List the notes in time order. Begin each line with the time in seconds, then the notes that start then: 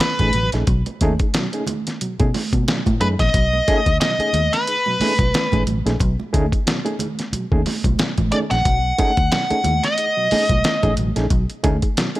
0.00 B4, snare, closed hi-hat
0.19 A1 A3 C#4 D#4 G#4, kick, closed hi-hat, muted conga, high conga
0.33 A1 B2 F#3, closed hi-hat, low conga
0.52 A#1 A3 C#4 D#4 G#4, snare, closed hi-hat
0.67 B1 B2 F#3, kick, closed hi-hat, muted conga
0.86 closed hi-hat, muted conga
1.01 D#2 A3 C#4 D#4 G#4, kick, closed hi-hat, high conga
1.19 D#4 G#4, kick, closed hi-hat
1.34 B2 F#3, snare, closed hi-hat
1.53 A3 C#4 D#4 G#4, closed hi-hat
1.67 D#4 G#4, closed hi-hat, high conga, low conga
1.87 snare, closed hi-hat
2.01 B2 F#3, closed hi-hat
2.19 B2 A3 C#4 D#4 G#4, kick, closed hi-hat, muted conga
2.34 D#4 G#4, snare, open hi-hat, high conga
2.53 B2, kick, closed hi-hat, high conga
2.68 B2 F#3, snare, closed hi-hat
2.86 A2, kick, closed hi-hat, muted conga, high conga
3.00 F#2 A3 C#4 D#4 G#4 B4, closed hi-hat, low conga
3.19 A#1 D#4 G#4 D#5, kick, snare, closed hi-hat
3.34 B1 B2 F#3, kick, closed hi-hat
3.53 muted conga
3.68 A3 C#4 D#4 G#4, kick, closed hi-hat, high conga
3.86 D2 D#4 G#4, kick, closed hi-hat
4.01 B2 F#3 D#5, snare, closed hi-hat, muted conga
4.19 A3 C#4 D#4 G#4, muted fingered electric bass stroke, closed hi-hat
4.33 D#2 D#4 G#4, closed hi-hat, high conga, low conga
4.53 B4, snare, closed hi-hat
4.67 D#4 G#4, closed hi-hat
4.86 B2 F#3, muted conga
5.00 A3 C#4 D#4 G#4, muted fingered electric bass stroke, snare, open hi-hat, high conga
5.19 B1, kick, closed hi-hat, high conga
5.34 snare, closed hi-hat
5.52 A1 A3 C#4 D#4 G#4, kick, closed hi-hat, muted conga, high conga
5.67 A1 B2 F#3, closed hi-hat, low conga
5.86 A#1 A3 C#4 D#4 G#4, snare, closed hi-hat
6.00 B1 B2 F#3, kick, closed hi-hat, muted conga
6.20 muted conga
6.33 D2 A3 C#4 D#4 G#4, kick, closed hi-hat, high conga
6.52 D#4 G#4, kick, closed hi-hat
6.67 B2 F#3, snare, closed hi-hat, muted conga
6.85 A3 C#4 D#4 G#4, closed hi-hat, muted conga
6.99 D#4 G#4, closed hi-hat, high conga, low conga
7.19 snare, closed hi-hat
7.33 B2 F#3, muted fingered electric bass stroke, closed hi-hat, muted conga
7.52 D#2 A3 C#4 D#4 G#4, kick
7.66 D#4 G#4, snare, open hi-hat, high conga
7.84 B1, kick, closed hi-hat, high conga
7.99 B2 F#3, muted fingered electric bass stroke, snare, closed hi-hat, muted conga
8.18 A1, kick, closed hi-hat, muted conga, high conga
8.32 A3 C#4 D#4 G#4 D5, closed hi-hat, low conga
8.51 A#1 D#4 G#4 F#5, snare, closed hi-hat
8.65 B1 B2 F#3, kick, closed hi-hat, muted conga
8.98 A3 C#4 D#4 G#4, kick, closed hi-hat, high conga
9.17 D2 D#4 G#4, kick, closed hi-hat
9.32 B2 F#3 F#5, snare, closed hi-hat, muted conga
9.50 A3 C#4 D#4 G#4, muted fingered electric bass stroke, closed hi-hat
9.64 D#2 D#4 G#4, closed hi-hat, high conga, low conga
9.84 D#5, snare, closed hi-hat
9.98 D#4 G#4, closed hi-hat
10.17 B2 F#3
10.31 A3 C#4 D#4 G#4, muted fingered electric bass stroke, snare, open hi-hat, high conga
10.49 B1, kick, closed hi-hat, high conga
10.64 snare, closed hi-hat
10.83 A1 A3 C#4 D#4 G#4, kick, closed hi-hat, high conga
10.97 A1 B2 F#3, closed hi-hat, low conga
11.16 A#1 A3 C#4 D#4 G#4, snare, closed hi-hat
11.30 B1 B2 F#3, kick, closed hi-hat
11.50 closed hi-hat
11.63 D2 A3 C#4 D#4 G#4, kick, closed hi-hat, high conga
11.82 D#4 G#4, kick, closed hi-hat
11.97 B2 F#3, snare, closed hi-hat
12.15 A3 C#4 D#4 G#4, closed hi-hat